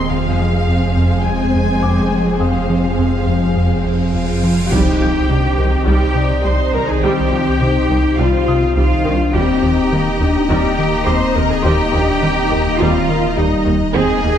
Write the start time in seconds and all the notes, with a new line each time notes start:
Already playing: D#1 C4 D#5 A#5 D#6 A#6
0.10 F1 F2 F3 G#3 C4 G#4 C5 F5
0.40 F3
0.69 F2
0.97 F2
1.25 F2 G#3 G#5
1.55 F2
1.83 F2 D6
2.12 F3
2.40 F2 F3 F5 D#6, cymbal swell
2.70 F3
2.99 F2
3.27 F2
3.57 F2
3.86 F2
4.14 F2 F4 F5
4.43 F3
4.71 C2 D#3 G3 C4 D#4 G4 C5 G5, impact
5.00 C2 F3 G6
5.30 C2 C3 G3 D4
5.59 C2 D#3 C4
5.87 C2 G3 D#4 G4 G5
6.15 C3 D5
6.45 C2 G3 C5 C6
6.73 C2 D#3 A#4 A#5
6.89 G#4 G#5
7.02 C2 G3 C4 G4 G5
7.31 C2 F3
7.60 C2 C3 G3 D#4
7.90 C2 D#3
8.17 C2 G3 F4 F5
8.48 C3 D#6
8.76 C2 G3 D#4 F4 F5
9.04 C2 D#3 D4
9.33 D#1 D#2 D#3 G3 A#3 C4 D#4 G4 D#5 G5 A#5
9.62 D#2 F3
9.91 D#2 D#3 G3 A#3
10.20 D#2 D#3 D4
10.48 D#2 G3 C4 G4 G5
10.79 D#3 A#3
11.06 D#2 G3 C4 C5 C6 D6
11.34 D#2 D#3 A#4 A#5
11.51 G#4 G#5
11.62 D#2 G3 A#3 G4 C5 G5 C6
11.93 D#2 F3 D4
12.22 D#2 D#3 G3 C4
12.50 D#2 D#3 A#3
12.79 D#2 G3 C4 F4 F5
13.09 D#3 A#3
13.36 D#2 G3 D#4 D#5
13.66 D#2 D#3
13.93 D#1 D#2 D#3 G#3 C4 D#4 G#4 C5 D#5 G#5
14.23 D#2 A#3